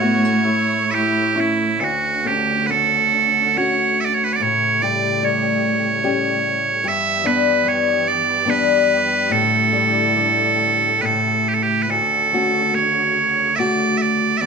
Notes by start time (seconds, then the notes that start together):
Already playing: A2 A3 E4 C#5
0.01 B3 F#4
0.25 C#4
0.44 E4
0.91 E4 G4 E5
1.35 A3 C#4 E4
1.40 E4
1.80 D2 D3 C#4 A4 F#5
1.84 F#4
2.25 A3 C#4 G4
2.67 A3 B4
2.71 A4
3.56 A3 C#4 F#4 C#5
4.00 E5
4.05 D5
4.14 C#5
4.24 B4
4.34 D5
4.39 A2 C#3 A3 G4 C#5
4.82 G3 G4 D5
5.23 G3 C#5
6.03 G3 C#4 G4
6.83 G2 E3 B3 G4
6.88 E5
7.24 G3 B3 D4 B4
7.65 G3 C#5
8.08 D5
8.45 G3 B3 D4
8.50 B4
9.30 A2 D3 A3 A4
9.72 G3 A3 E4
10.16 G3
11.02 A2 C#3 B4
11.06 A4
11.49 G4
11.54 A4
11.63 G4
11.83 B4
11.89 D2 C#3 D3 F#4 A4
12.33 A3 C#4 F#4
12.74 A3 C#5
13.56 A3 D5 E5
13.60 F#4
13.97 E5
14.02 D5
14.37 D5 E5
14.41 E2 G4